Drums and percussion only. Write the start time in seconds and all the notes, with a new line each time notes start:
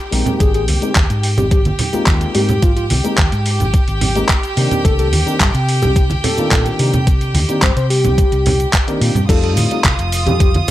0.12 open hi-hat
0.26 closed hi-hat, low conga, cabasa
0.40 kick, closed hi-hat, cabasa
0.54 closed hi-hat, cabasa
0.68 open hi-hat, high conga
0.82 closed hi-hat, cabasa
0.95 kick, clap, closed hi-hat, cabasa
1.10 closed hi-hat, cabasa
1.23 open hi-hat
1.38 closed hi-hat, low conga, cabasa
1.51 kick, closed hi-hat, cabasa
1.65 closed hi-hat, high conga, cabasa
1.79 open hi-hat, low conga
1.93 closed hi-hat, cabasa
2.06 kick, clap, closed hi-hat, cabasa
2.21 closed hi-hat, cabasa
2.35 open hi-hat
2.49 closed hi-hat, low conga, cabasa
2.62 kick, closed hi-hat, cabasa
2.77 closed hi-hat, cabasa
2.90 open hi-hat, high conga
3.05 closed hi-hat, cabasa
3.17 kick, clap, closed hi-hat, cabasa
3.32 closed hi-hat, cabasa
3.46 open hi-hat
3.60 closed hi-hat, low conga, cabasa
3.74 kick, closed hi-hat, cabasa
3.88 closed hi-hat, cabasa
4.01 open hi-hat, low conga
4.15 closed hi-hat, cabasa
4.29 kick, clap, closed hi-hat, cabasa
4.43 closed hi-hat, cabasa
4.57 open hi-hat
4.71 closed hi-hat, low conga, cabasa
4.85 kick, closed hi-hat, cabasa
4.98 closed hi-hat, cabasa
5.13 open hi-hat, high conga
5.27 closed hi-hat, cabasa
5.40 kick, clap, closed hi-hat, cabasa
5.54 closed hi-hat, cabasa
5.69 open hi-hat
5.82 closed hi-hat, low conga, cabasa
5.96 kick, closed hi-hat, cabasa
6.10 closed hi-hat, high conga, cabasa
6.24 open hi-hat, low conga
6.37 closed hi-hat, cabasa
6.51 kick, clap, closed hi-hat, cabasa
6.66 closed hi-hat, cabasa
6.79 open hi-hat
6.93 closed hi-hat, low conga, cabasa
7.07 kick, closed hi-hat, cabasa
7.21 closed hi-hat, cabasa
7.34 open hi-hat, high conga
7.49 closed hi-hat, cabasa
7.62 kick, clap, closed hi-hat, cabasa
7.77 closed hi-hat, cabasa
7.90 open hi-hat
8.04 closed hi-hat, low conga, cabasa
8.18 kick, closed hi-hat, cabasa
8.32 closed hi-hat, cabasa
8.46 open hi-hat, low conga
8.60 closed hi-hat, cabasa
8.73 kick, clap, closed hi-hat, cabasa
8.88 closed hi-hat, cabasa
9.01 open hi-hat
9.15 closed hi-hat, low conga, cabasa
9.29 kick, closed hi-hat, crash, cabasa
9.43 closed hi-hat
9.57 open hi-hat, high conga, cabasa
9.71 closed hi-hat, cabasa
9.84 kick, clap, closed hi-hat, cabasa
9.99 closed hi-hat, cabasa
10.12 open hi-hat, cabasa
10.27 closed hi-hat, low conga, cabasa
10.40 kick, closed hi-hat, cabasa
10.54 closed hi-hat, high conga, cabasa